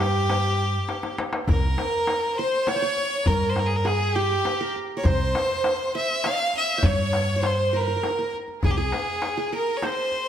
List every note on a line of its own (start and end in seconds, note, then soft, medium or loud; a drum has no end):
0.00 0.76 G2 medium
0.00 1.14 G4 medium
0.00 1.18 G4 medium
0.00 0.16 C5 medium
0.00 darbuka tek medium
0.30 darbuka tek medium
0.89 darbuka tek medium
1.03 darbuka ka medium
1.18 darbuka tek medium
1.33 darbuka ka medium
1.47 1.74 C2 medium
1.47 2.33 A#4 medium
1.47 2.62 A#4 medium
1.47 2.39 A#4 medium
1.47 darbuka dum medium
1.78 darbuka tek medium
2.07 darbuka tek medium
2.36 2.66 C5 medium
2.36 2.69 C5 medium
2.36 2.74 C5 medium
2.67 3.28 C#5 loud
2.67 3.26 C#5 medium
2.67 2.82 C#5 medium
2.67 darbuka tek medium
2.76 2.88 C5 medium
2.82 3.83 C#5 medium
2.97 darbuka ka soft
3.26 4.33 G2 medium
3.26 4.40 A#4 medium
3.26 3.50 A#4 medium
3.26 3.51 A#4 medium
3.26 darbuka dum medium
3.49 3.61 C5 medium
3.56 3.68 A#4 medium
3.56 darbuka tek medium
3.66 3.77 G#4 medium
3.76 3.88 A#4 medium
3.85 4.22 G#4 medium
3.85 4.13 G#4 medium
3.85 4.17 G#4 medium
3.85 darbuka tek medium
4.14 4.75 G4 medium
4.14 5.41 G4 medium
4.45 darbuka tek medium
4.61 4.96 A#4 medium
4.76 darbuka ka soft
4.97 6.10 A#4 medium
4.97 5.07 C#5 medium
5.03 5.32 C2 medium
5.03 6.09 C5 medium
5.03 6.20 C5 medium
5.03 5.95 C5 medium
5.03 darbuka dum medium
5.35 darbuka tek medium
5.64 darbuka tek medium
5.95 6.32 E5 medium
5.95 6.28 E5 medium
6.24 6.80 F5 medium
6.24 7.14 F5 medium
6.24 6.55 F5 loud
6.24 darbuka tek medium
6.54 6.87 E5 medium
6.54 darbuka ka soft
6.78 6.89 C5 medium
6.83 7.91 G2 medium
6.83 7.36 C#5 medium
6.83 7.44 C#5 medium
6.83 7.47 C#5 medium
6.83 darbuka dum medium
7.13 darbuka tek medium
7.36 7.49 C#5 soft
7.43 8.48 C5 medium
7.43 7.73 C5 medium
7.43 7.77 C5 medium
7.43 darbuka tek medium
7.73 7.80 A#4 medium
7.73 8.34 A#4 medium
7.73 darbuka ka soft
7.81 7.87 A#4 soft
7.88 7.96 A#4 soft
7.96 8.03 A#4 soft
8.03 8.10 A#4 soft
8.03 darbuka tek medium
8.11 8.18 A#4 soft
8.19 9.32 A#4 soft
8.34 darbuka ka soft
8.48 darbuka ka soft
8.62 8.90 C2 medium
8.62 8.76 G#4 medium
8.62 8.77 G#4 medium
8.62 8.72 G#4 medium
8.62 darbuka dum medium
8.71 8.78 G4 medium
8.77 9.52 G#4 medium
8.77 9.37 G#4 medium
8.77 9.49 G#4 medium
8.92 darbuka tek medium
9.22 darbuka tek medium
9.37 10.28 G#4 medium
9.52 10.28 A#4 medium
9.52 9.83 A#4 medium
9.52 9.78 A#4 medium
9.77 9.86 C#5 medium
9.82 10.28 C5 medium
9.82 darbuka tek medium
10.11 darbuka ka soft